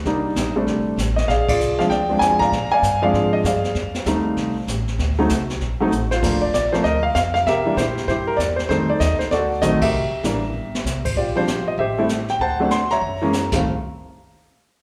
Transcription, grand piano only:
0.06 0.52 G3 medium
0.06 0.52 A#3 medium
0.06 0.52 D4 medium
0.06 0.53 D#4 medium
0.56 0.96 G3 medium
0.56 0.96 A3 medium
0.56 0.96 C4 medium
0.56 0.96 D4 medium
1.16 1.27 D#5 medium
1.28 1.49 G#4 medium
1.28 1.47 D5 medium
1.28 1.47 F5 medium
1.49 2.07 F4 medium
1.49 2.07 G#4 medium
1.49 1.80 D5 medium
1.79 1.89 F3 medium
1.79 1.90 G#3 medium
1.79 1.90 C4 medium
1.79 1.90 D4 medium
1.79 1.90 F5 medium
1.90 2.40 D5 medium
1.90 2.19 G5 medium
2.09 2.50 F3 medium
2.09 2.50 G#3 medium
2.09 2.50 C4 medium
2.09 2.50 D4 medium
2.19 2.40 G#5 loud
2.39 2.72 D5 medium
2.39 2.72 F5 medium
2.39 2.72 A#5 loud
2.72 3.03 D5 medium
2.72 3.01 F5 medium
2.72 3.00 G#5 medium
3.02 3.42 F3 medium
3.02 3.42 G#3 medium
3.02 3.42 C4 medium
3.02 3.43 D4 medium
3.02 3.45 G#4 medium
3.02 3.45 D5 medium
3.02 3.34 F5 medium
3.33 3.38 D#5 medium
3.46 3.74 G#4 medium
3.46 4.65 D5 medium
3.46 4.65 F5 medium
4.06 4.53 G3 medium
4.06 4.53 A3 medium
4.06 4.53 C4 medium
4.06 4.53 D#4 medium
5.19 5.29 F#3 medium
5.19 5.29 A3 medium
5.19 5.29 C4 medium
5.19 5.29 D#4 medium
5.80 5.90 F#3 medium
5.80 5.91 A3 medium
5.80 5.91 C4 medium
5.80 5.91 D#4 medium
6.11 6.70 F4 medium
6.11 6.43 C5 medium
6.23 6.40 F3 medium
6.23 6.40 A3 soft
6.23 6.41 A#3 medium
6.23 6.41 D4 medium
6.41 6.52 D5 medium
6.54 6.74 D5 loud
6.72 6.83 F3 medium
6.72 6.83 A3 medium
6.72 6.83 A#3 medium
6.72 6.84 C4 medium
6.72 6.77 C5 medium
6.84 7.43 A#4 medium
6.84 7.02 D#5 loud
7.03 7.13 F5 medium
7.15 7.20 F5 loud
7.34 7.46 F5 medium
7.47 7.78 G4 medium
7.47 8.05 A#4 medium
7.47 7.75 E5 loud
7.65 7.76 E3 medium
7.65 7.76 G3 medium
7.65 7.76 A#3 medium
7.65 7.76 D4 medium
7.77 8.08 E4 medium
7.77 8.09 G4 medium
7.77 8.06 C5 medium
8.08 8.66 E4 medium
8.08 8.67 G4 medium
8.08 8.28 C5 loud
8.27 8.38 A#4 medium
8.37 8.56 D5 medium
8.56 8.61 C5 medium
8.69 8.87 D#3 medium
8.69 8.87 G3 medium
8.69 8.87 A3 medium
8.69 8.87 C4 medium
8.69 9.28 D#4 medium
8.69 9.28 A4 medium
8.69 8.89 C5 loud
8.90 9.00 D5 medium
9.00 9.18 D#5 medium
9.19 9.30 C5 medium
9.31 9.90 F#4 medium
9.31 9.90 A4 medium
9.31 9.63 D5 loud
9.62 9.80 D#3 medium
9.62 9.80 F#3 medium
9.62 9.80 A3 medium
9.62 9.80 C4 medium
9.62 9.80 D#5 medium
9.82 11.02 G4 medium
9.82 11.02 A#4 medium
9.82 11.01 E5 loud
10.24 10.41 E3 medium
10.24 10.41 G3 medium
10.24 10.42 A#3 medium
10.24 10.42 D4 medium
11.05 11.16 C5 medium
11.17 11.36 F4 medium
11.17 11.36 G4 medium
11.17 11.22 D5 medium
11.36 11.46 F3 medium
11.36 11.46 G3 medium
11.36 11.46 C4 medium
11.36 11.47 D4 medium
11.36 11.76 F4 medium
11.36 11.76 G4 medium
11.36 11.65 C5 medium
11.68 11.72 D#5 medium
11.79 12.37 G4 medium
11.79 12.37 C5 medium
11.79 12.07 E5 medium
11.98 12.08 G3 medium
11.98 12.08 A3 medium
11.98 12.09 C4 medium
11.98 12.09 E4 medium
12.30 12.40 G5 medium
12.41 12.99 C5 medium
12.41 12.98 F#5 medium
12.41 12.69 A5 medium
12.60 12.70 F#3 medium
12.60 12.70 A3 medium
12.60 12.70 C4 medium
12.60 12.71 D4 medium
12.71 12.89 C6 loud
12.91 13.49 C#5 medium
12.91 13.49 E5 medium
12.91 13.48 A#5 loud
13.22 13.32 E3 medium
13.22 13.32 G#3 medium
13.22 13.32 A#3 medium
13.22 13.32 C#4 medium
13.53 13.63 D#3 medium
13.53 13.63 G3 medium
13.53 13.63 A3 medium
13.53 13.63 C4 medium
13.53 13.64 F5 medium

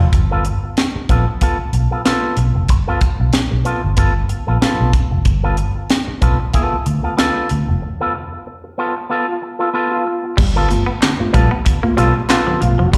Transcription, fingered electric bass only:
0.13 0.49 G1 medium
0.96 muted fingered electric bass stroke soft
1.10 1.23 A#1 medium
1.59 muted fingered electric bass stroke soft
1.73 1.86 B1 medium
2.37 2.50 B1 medium
2.55 2.69 F1 medium
2.69 2.82 G1 medium
3.20 3.30 B1 medium
3.52 3.62 B1 medium
3.84 3.94 G1 medium
3.98 4.21 G1 medium
4.48 4.58 A#1 medium
4.80 4.90 B1 medium
5.12 5.22 F1 medium
5.26 5.62 G1 loud
6.08 muted fingered electric bass stroke soft
6.22 6.35 B1 medium
6.73 muted fingered electric bass stroke soft
6.87 6.99 D2 medium
7.51 7.64 D2 medium
7.69 7.79 F1 medium
10.38 10.74 G1 loud
11.20 muted fingered electric bass stroke soft
11.34 11.47 A#1 loud
11.84 muted fingered electric bass stroke medium
11.98 12.11 B1 loud
12.62 12.75 B1 medium
12.80 12.94 F1 medium
12.94 12.98 G1 medium

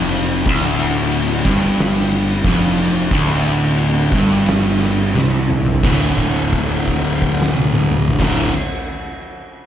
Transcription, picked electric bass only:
0.00 0.43 F1 loud
0.46 1.41 D1 loud
1.45 2.41 G1 medium
2.44 3.07 F1 loud
3.11 4.09 D1 medium
4.12 5.11 G1 loud
5.15 5.80 C2 loud
5.84 8.08 D1 loud
8.20 8.49 D1 medium

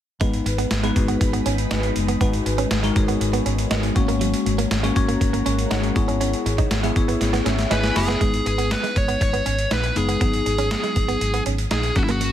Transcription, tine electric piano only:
0.20 0.77 G#3 medium
0.20 0.78 B3 medium
0.20 0.78 D#4 medium
0.20 0.78 B4 medium
0.83 0.95 G#3 medium
0.83 0.95 B3 medium
0.83 0.95 D#4 medium
0.83 0.95 B4 medium
0.96 1.87 G#3 medium
0.96 1.87 B3 medium
0.96 1.87 D#4 medium
0.96 1.87 F#4 medium
2.21 2.78 G#3 medium
2.21 2.78 D#4 medium
2.21 2.78 F#4 medium
2.21 2.78 B4 medium
2.83 2.94 G#3 medium
2.83 2.95 D#4 medium
2.83 2.95 F#4 medium
2.83 2.95 A#4 medium
2.95 3.87 G#3 medium
2.95 3.87 D#4 medium
2.95 3.87 F#4 medium
2.95 3.87 C#5 medium
3.95 4.75 A#3 medium
3.95 4.75 C#4 medium
3.95 4.75 F#4 medium
3.95 4.76 C#5 loud
4.83 4.94 A#3 medium
4.83 4.95 C#4 medium
4.83 4.95 F#4 medium
4.83 4.95 C#5 medium
4.95 5.87 A#3 medium
4.95 5.87 C#4 medium
4.95 5.87 F#4 medium
4.95 5.45 C#5 medium
5.46 5.70 G#4 medium
5.46 5.70 C#5 medium
5.71 5.95 C#5 medium
5.71 6.19 F#5 medium
5.95 6.75 B3 medium
5.95 6.75 E4 medium
5.95 6.75 G#4 medium
5.95 6.76 C#5 medium
6.83 6.94 B3 medium
6.83 6.95 E4 medium
6.83 6.95 G#4 medium
6.83 6.95 E5 medium
6.96 7.87 B3 medium
6.96 7.87 E4 medium
6.96 7.87 G#4 medium
6.96 7.87 C#5 medium
7.46 7.69 E5 medium
7.71 7.94 G#5 medium
7.96 8.19 B5 medium
8.20 9.11 G#3 medium
8.20 9.12 B3 medium
8.20 9.12 D#4 medium
8.20 9.12 B4 medium
9.95 10.18 G#3 medium
9.95 10.19 B3 medium
9.95 10.19 D#4 medium
9.95 10.19 B4 medium
10.21 11.12 F#3 medium
10.21 11.12 B3 medium
10.21 11.12 D#4 medium
10.21 11.12 G#4 medium
11.95 12.32 F#3 medium
11.95 12.32 A#3 medium
11.95 12.32 C#4 medium
11.95 12.32 A#4 medium

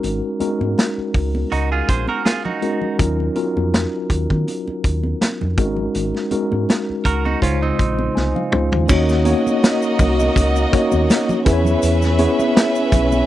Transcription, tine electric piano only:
0.00 0.30 G#3 medium
0.00 0.30 C#4 medium
0.00 0.30 D#4 medium
0.00 0.30 F#4 medium
0.00 0.31 A#4 medium
0.40 1.67 G#3 medium
0.40 1.67 C#4 medium
0.40 1.67 D#4 medium
0.40 1.67 F#4 medium
0.40 1.67 A#4 medium
2.62 2.94 G#3 medium
2.62 2.94 C#4 medium
2.62 2.94 D#4 medium
2.62 2.94 F#4 medium
2.62 2.94 A#4 medium
2.98 3.31 F#3 medium
2.98 3.31 C#4 medium
2.98 3.31 D#4 medium
2.98 3.31 F4 medium
2.98 3.31 A#4 medium
3.35 4.62 C#4 medium
3.35 4.62 D#4 medium
3.35 4.62 F4 medium
3.35 4.62 F#4 medium
3.35 4.63 A#4 medium
5.58 6.21 G#3 medium
5.58 5.65 C4 medium
5.58 6.21 D#4 medium
5.58 6.21 F#4 medium
5.58 6.21 A#4 medium
5.64 6.24 C#4 medium
6.31 7.40 G#3 medium
6.31 7.42 C#4 medium
6.31 7.41 D#4 medium
6.31 7.42 F#4 medium
6.31 7.42 A#4 medium
7.41 8.37 C#3 medium
7.41 8.37 G#3 medium
7.41 8.37 D#4 medium
7.41 8.37 F4 medium
7.41 8.37 C5 medium
7.79 8.13 C6 medium
8.15 8.34 G#5 medium
8.35 8.85 F5 medium
8.51 8.83 G#3 medium
8.51 8.83 C#4 medium
8.51 8.84 D#4 medium
8.51 8.84 F4 medium
8.51 8.84 C5 medium
8.88 9.20 A#3 medium
8.88 9.20 C#4 medium
8.88 9.20 D#4 medium
8.88 9.21 F#4 medium
8.88 9.21 C#5 medium
9.25 10.51 A#3 medium
9.25 10.51 C#4 medium
9.25 10.51 D#4 medium
9.25 10.51 F#4 medium
9.25 10.52 C#5 medium
10.72 11.46 A#3 medium
10.72 11.44 C#4 medium
10.72 11.46 D#4 medium
10.72 11.46 F#4 medium
10.72 11.46 C#5 medium
11.45 12.09 B3 medium
11.45 12.09 C#4 medium
11.45 12.09 E4 medium
11.45 12.09 G#4 medium
11.45 11.53 B4 medium
11.53 12.12 C#5 loud
12.18 13.26 B3 medium
12.18 13.26 C#4 medium
12.18 13.26 E4 medium
12.18 13.26 G#4 medium
12.18 13.26 C#5 medium

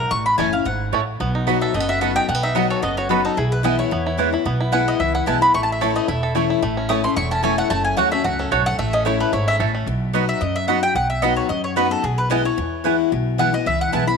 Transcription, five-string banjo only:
0.39 0.45 A3 medium
0.39 0.46 C#4 medium
0.39 0.46 E4 medium
0.94 1.00 A3 medium
0.94 1.00 C#4 medium
0.94 1.00 E4 medium
1.21 1.65 B3 medium
1.35 1.72 D#4 medium
1.47 1.86 F#4 medium
1.62 1.99 A4 medium
1.74 1.80 A3 medium
1.80 2.02 B3 medium
1.89 2.26 F#4 medium
2.02 2.41 A4 medium
2.16 2.42 D#4 medium
2.29 2.35 A3 medium
2.35 2.56 B3 medium
2.43 2.81 D#4 medium
2.56 2.95 F#4 medium
2.70 3.08 A4 medium
2.83 3.92 B3 medium
2.98 3.35 F#4 medium
3.11 3.38 A4 medium
3.25 3.37 D#4 medium
3.38 3.65 E4 medium
3.65 3.79 E4 medium
3.79 4.06 E4 medium
3.92 4.31 B3 medium
4.06 4.33 E4 medium
4.19 5.59 E3 medium
4.34 4.60 E4 medium
4.46 4.85 B3 medium
4.61 4.73 E4 medium
4.73 5.00 E4 medium
4.88 5.25 B3 medium
5.00 5.15 E4 medium
5.15 5.28 E4 medium
5.28 6.08 E4 medium
5.42 5.54 B3 medium
5.54 5.96 A3 medium
5.81 6.23 A4 medium
5.96 6.35 A3 medium
6.08 6.47 E4 medium
6.23 7.43 A4 medium
6.35 6.62 A3 medium
6.50 6.87 E4 medium
6.63 7.04 A3 medium
6.77 7.31 C#4 medium
6.90 7.16 E4 medium
7.04 7.58 A3 medium
7.17 7.56 E4 medium
7.32 8.39 C#4 medium
7.44 8.51 A4 medium
7.58 7.70 A3 medium
7.71 8.10 A3 medium
7.98 8.24 F#4 medium
8.13 8.50 A3 medium
8.25 8.64 F#4 medium
8.40 8.77 C#4 medium
8.52 8.79 A4 medium
8.67 8.78 A3 medium
8.79 9.18 A3 medium
8.94 9.31 C#4 medium
9.06 9.32 E4 medium
9.20 9.58 A3 medium
9.33 9.72 E4 medium
9.48 9.85 C#4 medium
9.60 9.87 A4 medium
9.75 9.87 A3 medium

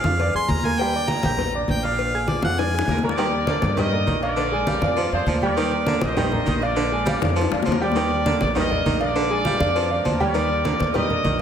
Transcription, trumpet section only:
2.89 2.96 F4 medium
2.89 2.96 A#4 medium
3.04 3.75 A#4 medium
3.04 3.74 D5 loud
3.79 4.20 A#4 medium
3.79 4.20 D#5 loud
4.23 5.09 A#4 loud
4.23 5.09 D5 loud
5.13 5.27 G#4 medium
5.13 5.27 C5 loud
5.29 5.35 F4 medium
5.29 5.35 A#4 medium
5.44 5.99 A#4 medium
5.44 5.99 D5 loud
6.04 6.63 C5 medium
6.04 6.63 D#5 loud
6.64 7.40 A#4 medium
6.64 7.41 D5 loud
7.68 7.81 F4 medium
7.68 7.81 A#4 medium
7.82 8.52 A#4 medium
7.82 8.53 D5 loud
8.57 8.99 A#4 loud
8.57 8.99 D#5 loud
9.03 10.02 A#4 medium
9.03 10.03 D5 loud
10.07 10.20 F4 medium
10.07 10.21 A#4 medium
10.22 10.92 A#4 medium
10.22 10.93 D5 loud
10.96 11.37 A#4 medium
10.96 11.38 D#5 loud

